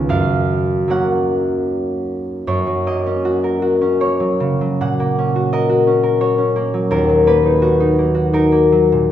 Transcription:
Already playing: C#2 G#3 B3 C#4 C#5
0.09 F#2 F5
0.88 F#3 A#3 C#4 F#5
2.47 F#2 C#5
2.67 F#3
2.87 A#3 D#5
3.06 C#4
3.25 F#4
3.44 A#4
3.62 F#4
3.81 C#4
4.00 A#3 C#5
4.20 F#3
4.40 C#3
4.61 F#3
4.81 A#2 F#5
5.00 A#3
5.18 C#4
5.36 F#4
5.53 A#4 D#5
5.69 F#4
5.87 C#4
6.03 A#4
6.21 F#4 C#5
6.38 C#4
6.56 A#3
6.74 F#3
6.91 D#2 A#4
7.09 F#3
7.27 A#3 B4
7.46 D#4
7.62 F#4
7.80 D#4
7.98 A#3
8.15 F#4
8.33 D#4 A#4
8.52 A#3
8.72 F#3
8.92 A#2

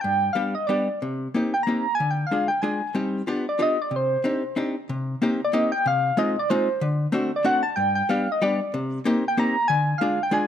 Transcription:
0.01 G2 G5
0.33 G3 B3 D4 G4 F5
0.55 D#5
0.67 G3 B3 D4 G4 D5
1.02 C3
1.34 A#3 C4 D#4 G4
1.54 G5
1.63 A#3 A#5
1.68 C4 D#4 G4
1.95 G#5
2.00 D3
2.11 G5
2.27 F5
2.31 G#3 D4 F4 G#4
2.48 G5
2.62 G#3 D4 F4 G#4 G#5
2.94 G3 C4 D#4 G4
3.27 B3 D4 F4 G4
3.49 D5
3.59 B3 D4 F4 G4 D#5
3.82 D5
3.91 C3
3.96 C5
4.24 C4 D4 D#4 G4
4.56 C4 D4 D#4 G4
4.89 C3
5.22 A#3 C4 D#4 G4
5.45 D5
5.53 A#3 C4 D#4 G4 D#5
5.72 G5
5.86 C3 F5
6.17 G#3 C4 D#4 F4 D#5
6.39 D5
6.50 G#3 C4 D#4 F4 C5
6.81 D3
7.12 A3 C4 D4 F#4
7.36 D5
7.44 A3 C4 D4 F#4 F#5
7.63 A5
7.76 G2 G5
7.95 G5
8.09 G3 B3 D4 G4 F5
8.32 D#5
8.42 G3 B3 D4 G4 D5
8.74 C3
9.05 A#3 C4 D#4 G4
9.28 G5
9.37 A#3 C4 D#4 G4 A#5
9.68 D3 G#5
9.98 G#3 D4 F4 F5
10.03 G#4
10.23 G5
10.31 G#3 D4 F4 G#4 G#5

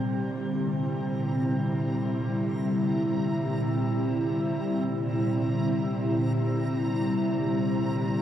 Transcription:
Already playing: A#2 C3 D3 G3 C4 E4 A#5

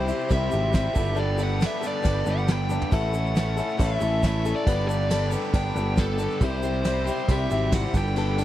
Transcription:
Already playing: C2 G4 C5 E5 C6
0.08 C3 G3 C4 E4 G4, ride, shaker
0.20 shaker
0.29 C2 C3 G3 C4 E4 G4 E5, kick, ride, shaker
0.51 G#1 C4 E4 G4, ride, shaker
0.73 C3 G3 C4 E4 G4 E5, kick, snare, ride, shaker
0.94 G1 G2 D3 G3 B3 D4 G4 A4, kick, crash, shaker
0.98 A4 G5 B5
1.06 shaker
1.15 G2 D3 G3 B3 D4 A4, shaker
1.19 D4 G4 D5
1.38 G3 B3 D4 G4 A4, ride, shaker
1.43 F#5
1.49 shaker
1.60 G3 B3 D4 G4 A4, snare, ride, shaker
1.66 E5
1.81 G3 B3 D4 G4 A4, ride, shaker
1.85 G2 D3 D5
2.03 G1 G3 B3 D4 G4 A4, kick, ride, shaker
2.25 G1 G3 B3 D4 G4 A4, ride, shaker
2.31 F#5
2.38 shaker
2.48 G2 D3 G3 B3 D4 G4 A4, snare, ride, shaker
2.52 G5
2.69 G3 B3 D4 G4 A4, high tom, shaker
2.81 floor tom, shaker
2.91 A1 A2 E3 A3 C#4 E4 A4 E5 F#5 C#6, kick, splash, crash, shaker
3.14 A3 C#4 E4 A4, ride, shaker
3.26 shaker
3.36 E3 A3 C#4 E4 A4, snare, ride, shaker
3.57 A2 E3 A3 C#4 E4 A4, ride, shaker
3.69 shaker
3.77 A1 A2 E3 A3 C#4 E4 A4 E5, kick, ride, shaker
4.01 A1 A3 C#4 E4 A4, ride, shaker
4.22 A2 E3 A3 C#4 E4 A4, kick, snare, ride, shaker
4.27 E5
4.44 A3 C#4 E4 A4, ride, shaker
4.56 D5, shaker
4.66 G1 G2 D3 G3 B3 D4 G4 A4 G5 B5, kick, ride, shaker
4.87 G3 B3 D4 G4 A4 D5, ride, shaker
5.00 shaker
5.08 G3 B3 D4 G4 A4, snare, ride, shaker
5.30 G2 D3 G3 B3 D4 G4 A4, ride, shaker
5.34 D4
5.43 shaker
5.51 G1 G3 B3 D4 G4 A4, kick, ride, shaker
5.56 G5
5.74 G1 G3 B3 D4 G4 A4, ride, shaker
5.97 G2 D3 G3 B3 D4 G4 A4, kick, snare, ride, shaker
6.17 G3 B3 D4 G4 A4, ride, shaker
6.30 shaker
6.40 C2 C3 G3 C4 E4 G4 E5 C6, kick, ride, shaker
6.44 C5
6.62 C4 E4 G4, ride, shaker
6.73 shaker
6.84 G3 C4 E4 G4, snare, ride, shaker
7.05 C3 G3 C4 E4 G4, ride, shaker
7.18 shaker
7.27 C2 C3 G3 C4 E4 G4, kick, ride, shaker
7.32 E5
7.49 G#1 C4 E4 G4, ride, shaker
7.71 C3 G3 C4 E4 G4 F#5, kick, snare, ride, shaker
7.93 G1 G2 D3 G3 B3 D4 G4 A4 G5 B5, kick, ride, shaker
7.98 G5
8.06 shaker
8.15 G2 D3 G3 B3 D4 G4 A4, ride, shaker
8.37 G3 B3 D4 G4 A4, ride, shaker

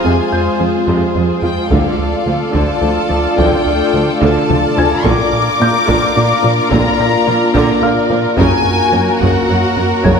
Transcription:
Already playing: G#3 C4 F4 G#4 C5 F5 F6
0.04 F2 C3 F3 G#5
0.32 F2 G6
0.60 F2 F3 C4
0.87 F2 C3 F3
1.15 F2 C3 G#3
1.42 F2 F3 F4 G5
1.70 D2 D3 A3 D4 F4 A4 D5 F5, taiko
1.99 D2
2.26 D2 D3 F3 A3
2.54 D2 D3 A5, taiko
2.82 D2 D3 F3
3.10 D2 F3 D4
3.38 D2 D3 G5, taiko
3.66 D2
3.94 D2 D3 F3 A3
4.21 D2 D3 A5, taiko mid
4.49 D2 D3 F3, taiko mid
4.76 D2 F3 D4 G#5 G#6, taiko low
5.05 A#2 D3 A#3 D4 F4 A#4 D5 F5 D6, taiko
5.33 A#2
5.60 A#2 F3 A#3 F4 G6
5.88 A#2 D3 A#3, taiko
6.16 A#2 D3 D4
6.43 A#2 F3 A#4
6.71 A#2 D3 A#3 A#5, taiko
7.00 A#2 A#6
7.26 A#2 F3 A#3 F4
7.54 A#2 D3 A#3 A#5, taiko
7.82 A#2 D3 D4 F5 F6
8.10 A#2 F3 A#4
8.37 F#2 C#3 F#3 A#3 F#4 A#4 C#5 G#5, taiko
8.65 F#2
8.93 F#2 F#3 A#3 C#4
9.20 F#2 C#3 F#3 F#5, taiko
9.48 F#2 F#3 A#3
9.77 F#2 A#3 F#4
10.03 F#2 C#3 F#3 C#5 G#6, taiko

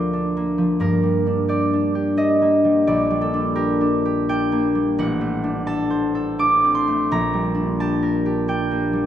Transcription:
Already playing: D2 F3 A#3 D4 F4 A#4 D5 F5
0.13 D4
0.37 A#3
0.58 F3
0.80 G2 A#4
1.03 G3
1.27 D4
1.48 G4 D5
1.73 D4
1.95 G4
2.17 D4 D#5
2.42 A#3
2.64 G3
2.87 A#1 D5
3.11 G3
3.21 A4
3.34 D4
3.55 G4 A#4
3.81 D4
4.05 G4
4.29 D4 G5
4.52 A#3
4.75 G3
4.99 A1 F#5
5.21 A3
5.44 D4
5.67 A4 A5
5.90 C5
6.15 A4
6.39 D4 D6
6.64 C4
6.75 C6
6.88 A3
7.11 A#1 A#5
7.33 G3
7.55 D4
7.80 G4 A5
8.03 A#4
8.26 G4
8.48 D4 G5
8.71 A#3
8.93 G3

